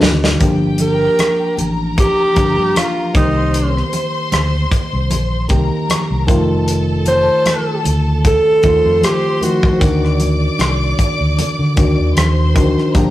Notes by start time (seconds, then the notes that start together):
Already playing: D#3 C4 D4 F#4
0.01 D2, snare, high conga
0.24 snare
0.39 G1 F3 A#3 D4 G4 G5, kick, closed hi-hat
0.78 A#4, closed hi-hat, muted conga
1.19 cross-stick, closed hi-hat, high conga
1.57 A1 A#4 A#5, closed hi-hat, low conga
1.98 G4, kick, closed hi-hat, muted conga
2.35 G1 F3 A#3 D4 G4, kick, closed hi-hat
2.57 G2
2.75 F4, cross-stick, closed hi-hat, high conga
3.13 C2 D#3 A#3 C4 D#4 G4 C5 C6, kick, closed hi-hat, high conga
3.54 closed hi-hat
3.77 cross-stick
3.93 closed hi-hat, muted conga
4.32 D2, cross-stick, closed hi-hat, high conga
4.72 kick, closed hi-hat
4.93 C2
5.10 A#1, closed hi-hat, muted conga, low conga
5.48 C2 D#3 A#3 C4 G4 A#4 A#5, kick, closed hi-hat, muted conga
5.89 cross-stick, closed hi-hat, high conga
6.10 C2
6.27 F1 D#3 A3 C4 F4 A4 A5, kick, closed hi-hat, high conga
6.68 closed hi-hat
7.06 C5, closed hi-hat, muted conga
7.46 cross-stick, closed hi-hat, high conga
7.84 D2, closed hi-hat, low conga
8.25 A4, kick, closed hi-hat, muted conga
8.63 D#2 D#3 A3 C4 F4 C5 C6, kick, closed hi-hat, muted conga
8.85 F2
9.02 G4, cross-stick, closed hi-hat, high conga
9.40 D#3 F3 A3 C4 F#4, closed hi-hat, high conga
9.63 kick, cross-stick
9.79 D2 D#3 C4 D4 F#4 D5 D6, kick, closed hi-hat
10.05 cross-stick
10.20 closed hi-hat, muted conga
10.59 C2, cross-stick, closed hi-hat, high conga
10.99 kick, closed hi-hat
11.19 D2
11.38 closed hi-hat, muted conga, low conga
11.59 D3
11.76 D2 D#3 C4 D4 F#4, kick, closed hi-hat, muted conga
11.98 D#2
12.16 D#2 C5 C6, cross-stick, closed hi-hat, high conga
12.54 D2 D#3 C4 D4 F#4, kick, closed hi-hat, high conga
12.78 cross-stick
12.94 G1 F3 A#3 D4 G4 A#4 A#5, kick, closed hi-hat